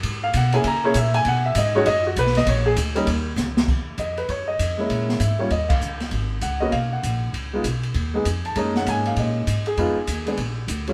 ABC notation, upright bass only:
X:1
M:4/4
L:1/8
Q:"Swing" 1/4=197
K:C#dor
V:1 name="Upright bass" clef=bass
G,,2 B,,2 C,2 A,,2 | B,,2 G,,2 F,,2 B,,,2 | A,,,2 =D,,2 ^D,,2 C,,2 | [K:Ebm] E,,2 F,,2 G,,2 F,,2 |
B,,2 A,,2 E,,2 D,,2 | A,,,2 D,,2 C,,2 B,,,2 | D,,2 C,,2 E,,2 F,,2 | G,,2 A,,2 B,,2 A,,2 |
F,, z E,,2 B,,,2 =D,,2 |]